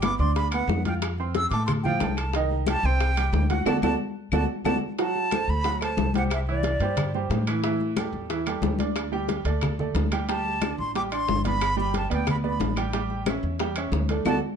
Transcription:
Already playing: G1
0.02 B3 B4 B5 D6, high bongo, high conga, high timbale, low timbale, claves
0.19 D2 D4 D5 C6 D6, high conga
0.36 B5, high bongo, high conga, high timbale
0.51 B3 B4 F#5 B5, high bongo, high conga, high timbale, claves
0.68 F2, high bongo, low bongo, high conga, low timbale
0.85 F4 F5 G5 F6, high bongo, high conga, high timbale
1.02 high bongo, high conga, high timbale, claves
1.18 C4 C5 C6, high conga
1.35 E6, high bongo, high conga, high timbale, low timbale
1.50 A2 A3 A4 A5 D6, high bongo, high timbale
1.66 C6, high bongo, high conga, low conga, high timbale, claves
1.83 F3 F4 F5 G5, high bongo, high conga, low conga
2.00 C2 A3 A4 A5, high bongo, low bongo, high conga, high timbale, low timbale
2.17 A5, high bongo, high conga, high timbale, claves
2.33 D#3 D#4 D#5, high bongo, high conga, high timbale
2.50 high bongo, high conga
2.67 G3 G4 G5 A5, high bongo, high conga, high timbale, low timbale, claves
2.83 C2 C4 C5 G5 C6, high conga
3.00 high bongo, high conga, high timbale
3.16 G3 G4 G5, high bongo, high conga, high timbale, claves
3.33 D2, high bongo, low bongo, high conga, low timbale
3.50 F#4 F#5 F#6, high bongo, high conga, high timbale
3.66 D2 F#4 A4 D5 A5, low bongo, high conga, high timbale, claves
3.82 D2 F#4 A4 D5 A5, low bongo, high conga, high timbale, claves
4.32 D2 F#4 A4 D5 A5, low bongo, high conga, high timbale, claves
4.65 D2 F#4 A4 D5 A5, low bongo, high conga, high timbale, claves
4.99 F#3 F#4 F#5 A5, high bongo, high conga, high timbale
5.15 high bongo, high conga
5.31 A3 A4 C5, high bongo, high conga, high timbale, low timbale, claves
5.48 D2 B5, high conga
5.64 F#3 F#4 F#5, high bongo, high conga, high timbale
5.81 A3 A4 C5 A5, high bongo, high conga, high timbale, claves
5.97 C2, high bongo, low bongo, high conga, low timbale
6.14 G3 G4 C5 F#5, high bongo, high conga, high timbale
6.30 E5, high bongo, high conga, high timbale, claves
6.47 E3 E4 D5 E5, high conga
6.63 high bongo, high conga, high timbale, low timbale
6.80 G2 G3 G4 C5, high bongo, high timbale
6.97 high bongo, high conga, low conga, high timbale, claves
7.14 G3 G4 C5, high bongo, high conga
7.30 A2, high bongo, low bongo, high conga, high timbale, low timbale
7.47 E3 E4 E5, high bongo, high conga, high timbale, claves
7.64 E3 E4 E5, high bongo, high conga, high timbale
7.80 high bongo, high conga
7.96 G3 G4 A4, high bongo, high conga, high timbale, low timbale, claves
8.13 E2, high conga
8.30 E3 E4 E5, high bongo, high conga, high timbale
8.46 G3 G4 A4, high bongo, high conga, high timbale, claves
8.62 D2, high bongo, low bongo, high conga, low timbale
8.79 D4 D5, high bongo, high conga, high timbale
8.96 high bongo, high conga, high timbale, claves
9.12 G3 G4 G5, high conga
9.29 high bongo, high conga, high timbale, low timbale
9.45 D2 A3 A4 D5, high bongo, high timbale
9.61 high bongo, high conga, low conga, high timbale, claves
9.79 A3 A4 D5, high bongo, high conga, low conga
9.95 D2, high bongo, low bongo, high conga, high timbale, low timbale
10.12 G3 G4 G5, high bongo, high conga, high timbale, claves
10.29 G3 G4 G5 A5, high bongo, high conga, high timbale
10.46 high bongo, high conga
10.61 D4 D5, high bongo, high conga, high timbale, low timbale, claves
10.78 A1 C6, high conga
10.95 G3 G4 G5 D6, high bongo, high conga, high timbale
11.12 D4 D5 C6, high bongo, high conga, high timbale, claves
11.28 G1, high bongo, low bongo, high conga, low timbale
11.44 B3 B4 D5 B5, high bongo, high conga, high timbale
11.61 high bongo, high conga, high timbale, claves
11.77 G3 G4 G5 B5, high conga
11.94 A5, high bongo, high conga, high timbale, low timbale
12.10 D2 B3 B4 D5 G5, high bongo, high timbale
12.27 B5, high bongo, high conga, low conga, high timbale, claves
12.44 B3 B4 D5 B5, high bongo, high conga
12.60 A1, high bongo, low bongo, high conga, high timbale, low timbale
12.76 G3 G4 G5, high bongo, high conga, high timbale, claves
12.93 G3 G4 G5, high bongo, high conga, high timbale
13.10 high bongo, high conga
13.26 C#4 C#5 E5, high bongo, high conga, high timbale, low timbale, claves
13.43 E2, high conga
13.59 G3 G4 G5, high bongo, high conga, high timbale
13.76 C#4 C#5 E5, high bongo, high conga, high timbale, claves
13.92 D2, high bongo, low bongo, high conga, low timbale
14.09 A3 A4 D5, high bongo, high conga, high timbale
14.25 D2 F#4 A4 D5 A5, low bongo, high conga, high timbale, claves

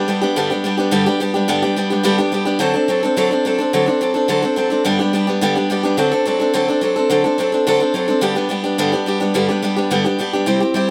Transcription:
0.08 G3 B3 D4 G4
0.21 G3 B3 D4 G4
0.36 G2 D3 G3 B3 D4 G4
0.50 G3 B3 D4 G4
0.64 G3 B3 D4 G4
0.77 G3 B3 D4 G4
0.91 G2 D3 G3 B3 D4 G4
1.06 G3 B3 D4 G4
1.20 G3 B3 D4 G4
1.34 G3 B3 D4 G4
1.48 G2 D3 G3 B3 D4 G4
1.62 G3 B3 D4 G4
1.76 G3 B3 D4 G4
1.90 G3 B3 D4 G4
2.03 G2 D3 G3 B3 D4 G4
2.18 G3 B3 D4 G4
2.32 G3 B3 D4 G4
2.45 G3 B3 D4 G4
2.59 D3 F#3 C4 D4 A4
2.74 C4 D4 A4
2.88 F#3 C4 D4 A4
3.03 C4 D4 A4
3.17 D3 F#3 C4 D4 A4
3.31 C4 D4 A4
3.45 F#3 C4 D4 A4
3.58 C4 D4 A4
3.73 D3 F#3 C4 D4 A4
3.86 C4 D4 A4
4.01 F#3 C4 D4 A4
4.14 C4 D4 A4
4.28 D3 F#3 C4 D4 A4
4.42 C4 D4 A4
4.56 F#3 C4 D4 A4
4.70 C4 D4 A4
4.85 G2 D3 G3 B3 D4 G4
4.99 G3 B3 D4 G4
5.13 G3 B3 D4 G4
5.27 G3 B3 D4 G4
5.41 G2 D3 G3 B3 D4 G4
5.55 G3 B3 D4 G4
5.70 G3 B3 D4 G4
5.83 G3 B3 D4 G4
5.97 D3 F#3 C4 D4 A4
6.12 C4 D4 A4
6.26 F#3 C4 D4 A4
6.40 C4 D4 A4
6.54 D3 F#3 C4 D4 A4
6.68 C4 D4 A4
6.81 F#3 C4 D4 A4
6.96 C4 D4 A4
7.10 D3 F#3 C4 D4 A4
7.24 C4 D4 A4
7.38 F#3 C4 D4 A4
7.52 C4 D4 A4
7.67 D3 F#3 C4 D4 A4
7.80 C4 D4 A4
7.94 F#3 C4 D4 A4
8.08 C4 D4 A4
8.21 G2 D3 G3 B3 D4 G4
8.35 G3 B3 D4 G4
8.49 G3 B3 D4 G4
8.64 G3 B3 D4 G4
8.78 G2 D3 G3 B3 D4 G4
8.92 G3 B3 D4 G4
9.06 G3 B3 D4 G4
9.20 G3 B3 D4 G4
9.34 G2 D3 G3 B3 D4 G4
9.48 G3 B3 D4 G4
9.63 G3 B3 D4 G4
9.76 G3 B3 D4 G4
9.91 G2 D3 G3 B3 D4 G4
10.04 G3 B3 D4 G4
10.19 G3 B3 D4 G4
10.33 G3 B3 D4 G4
10.46 C3 G3 C4 E4 G4
10.60 C4 E4 G4
10.74 G3 C4 E4 G4

